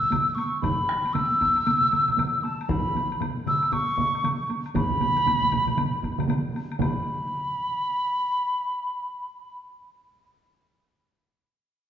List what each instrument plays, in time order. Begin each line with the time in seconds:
Already playing: piccolo E6
0.01 taiko low-mid, taiko high
0.11 taiko low-mid, taiko high, high woodblock
0.27 taiko high
0.35 piccolo C#6, taiko high, high woodblock
0.52 taiko high
0.61 piccolo B5, taiko, taiko mid, taiko high, high woodblock
0.78 taiko high
0.89 taiko rim, high woodblock
1.04 taiko high, high woodblock
1.13 piccolo E6, taiko mid, taiko high, high woodblock
1.30 taiko high
1.41 taiko, taiko high, high woodblock
1.56 taiko high, high woodblock
1.67 taiko mid, taiko high, high woodblock
1.81 taiko mid
1.92 taiko mid, taiko high, high woodblock
2.08 taiko mid, taiko high, high woodblock
2.18 taiko mid, taiko high, high woodblock
2.33 taiko high
2.43 piccolo A5, taiko high, high woodblock
2.59 taiko high, high woodblock
2.69 piccolo B5, taiko, taiko low-mid, taiko high, high woodblock
2.85 taiko high
2.95 taiko low-mid, taiko high, high woodblock
3.11 taiko high, high woodblock
3.20 taiko low-mid, taiko high, high woodblock
3.37 taiko high
3.46 piccolo E6, taiko low-mid, taiko high, high woodblock
3.63 taiko high, high woodblock
3.72 piccolo C#6, taiko low-mid, taiko high, high woodblock
3.88 taiko high
3.98 taiko low-mid, taiko high
4.14 taiko high, high woodblock
4.24 taiko low-mid, taiko high, high woodblock
4.39 taiko high
4.49 taiko high, high woodblock
4.65 taiko high, high woodblock
4.75 piccolo B5, taiko, taiko low-mid, taiko mid, taiko high, high woodblock
4.90 taiko low-mid, taiko mid, taiko high
5.00 taiko low-mid, taiko mid, taiko high, high woodblock
5.16 taiko low-mid, taiko mid, high woodblock
5.26 taiko low-mid, taiko mid, taiko high, high woodblock
5.41 taiko low-mid, taiko mid, taiko high
5.51 taiko, taiko low-mid, taiko mid, taiko high, high woodblock
5.67 taiko low-mid, taiko mid, taiko high, high woodblock
5.77 taiko low-mid, taiko mid, taiko high, high woodblock
5.93 taiko high
6.03 taiko, taiko high, high woodblock
6.18 taiko low-mid, taiko mid, high woodblock
6.28 taiko low-mid, taiko mid, taiko high, high woodblock
6.54 taiko high, high woodblock
6.70 taiko high, high woodblock
6.79 piccolo B5, taiko, taiko low-mid, taiko mid, taiko high, high woodblock